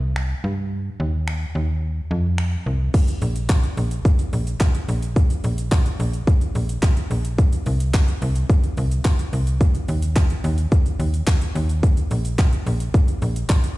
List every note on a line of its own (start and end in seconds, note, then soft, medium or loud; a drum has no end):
0.00 0.35 C2 medium
0.16 finger snap loud
0.44 0.90 G2 medium
1.00 1.46 D#2 medium
1.28 finger snap loud
1.55 2.01 D#2 medium
2.11 2.57 F2 medium
2.38 finger snap loud
2.66 2.89 C2 medium
2.94 kick loud
2.94 crash loud
2.94 shaker medium
3.08 closed hi-hat medium
3.08 shaker medium
3.22 3.68 A#1 medium
3.22 open hi-hat medium
3.22 shaker medium
3.36 closed hi-hat medium
3.36 shaker medium
3.49 kick loud
3.49 clap loud
3.49 shaker medium
3.63 closed hi-hat medium
3.63 shaker soft
3.77 4.00 A#1 medium
3.77 open hi-hat medium
3.77 shaker medium
3.91 closed hi-hat medium
3.91 shaker medium
4.05 kick loud
4.05 shaker medium
4.19 closed hi-hat medium
4.19 shaker medium
4.33 4.56 A#1 medium
4.33 open hi-hat medium
4.33 shaker medium
4.47 closed hi-hat medium
4.47 shaker medium
4.60 kick loud
4.60 clap loud
4.60 shaker medium
4.75 closed hi-hat medium
4.75 shaker medium
4.89 5.35 A#1 medium
4.89 open hi-hat medium
4.89 shaker medium
5.02 closed hi-hat medium
5.02 shaker medium
5.16 kick loud
5.16 shaker medium
5.30 closed hi-hat medium
5.30 shaker medium
5.44 5.90 A#1 medium
5.44 open hi-hat medium
5.44 shaker medium
5.58 closed hi-hat medium
5.58 shaker medium
5.72 kick loud
5.72 clap loud
5.72 shaker medium
5.86 closed hi-hat soft
5.86 shaker medium
6.00 6.23 A#1 medium
6.00 open hi-hat medium
6.00 shaker medium
6.13 closed hi-hat medium
6.13 shaker medium
6.27 kick loud
6.27 shaker medium
6.41 closed hi-hat soft
6.41 shaker medium
6.55 6.78 A#1 medium
6.55 open hi-hat medium
6.55 shaker medium
6.69 closed hi-hat medium
6.69 shaker medium
6.83 kick loud
6.83 clap loud
6.83 shaker medium
6.97 closed hi-hat medium
6.97 shaker medium
7.11 7.57 A#1 medium
7.11 open hi-hat medium
7.11 shaker medium
7.25 closed hi-hat medium
7.25 shaker medium
7.38 kick loud
7.38 shaker medium
7.53 closed hi-hat medium
7.53 shaker medium
7.66 8.12 C2 medium
7.66 open hi-hat medium
7.66 shaker medium
7.80 closed hi-hat medium
7.80 shaker medium
7.94 kick loud
7.94 clap loud
7.94 shaker medium
8.08 closed hi-hat medium
8.08 shaker medium
8.22 8.45 C2 medium
8.22 open hi-hat medium
8.22 shaker medium
8.36 closed hi-hat medium
8.36 shaker medium
8.50 kick loud
8.50 shaker medium
8.64 closed hi-hat medium
8.64 shaker soft
8.77 9.01 C2 medium
8.77 open hi-hat medium
8.77 shaker medium
8.92 closed hi-hat medium
8.92 shaker medium
9.05 kick loud
9.05 clap loud
9.05 shaker medium
9.19 closed hi-hat medium
9.19 shaker medium
9.33 9.79 C2 medium
9.33 open hi-hat medium
9.33 shaker medium
9.47 closed hi-hat medium
9.47 shaker medium
9.61 kick loud
9.61 shaker medium
9.75 closed hi-hat medium
9.75 shaker medium
9.88 10.35 D#2 medium
9.88 open hi-hat medium
9.88 shaker medium
10.02 closed hi-hat medium
10.02 shaker medium
10.16 kick loud
10.16 clap loud
10.16 shaker medium
10.30 closed hi-hat medium
10.30 shaker medium
10.44 10.67 D#2 loud
10.44 open hi-hat medium
10.44 shaker medium
10.58 closed hi-hat medium
10.58 shaker medium
10.72 kick loud
10.72 shaker medium
10.86 closed hi-hat medium
10.86 shaker medium
10.99 11.23 D#2 medium
10.99 open hi-hat medium
10.99 shaker medium
11.14 closed hi-hat medium
11.14 shaker medium
11.27 kick loud
11.27 clap loud
11.27 shaker medium
11.42 closed hi-hat medium
11.42 shaker medium
11.55 12.01 D#2 medium
11.55 open hi-hat medium
11.55 shaker medium
11.69 closed hi-hat medium
11.69 shaker medium
11.83 kick loud
11.83 shaker medium
11.97 closed hi-hat medium
11.97 shaker medium
12.11 12.57 A#1 medium
12.11 open hi-hat medium
12.11 shaker medium
12.25 closed hi-hat medium
12.25 shaker medium
12.39 kick loud
12.39 clap loud
12.39 shaker medium
12.53 closed hi-hat soft
12.53 shaker medium
12.67 12.89 A#1 medium
12.67 open hi-hat medium
12.67 shaker medium
12.80 closed hi-hat medium
12.80 shaker medium
12.94 kick loud
12.94 shaker medium
13.08 closed hi-hat medium
13.08 shaker medium
13.22 13.45 A#1 medium
13.22 open hi-hat medium
13.22 shaker medium
13.36 closed hi-hat medium
13.36 shaker medium
13.49 kick loud
13.49 clap loud
13.49 shaker medium
13.64 closed hi-hat medium
13.64 shaker medium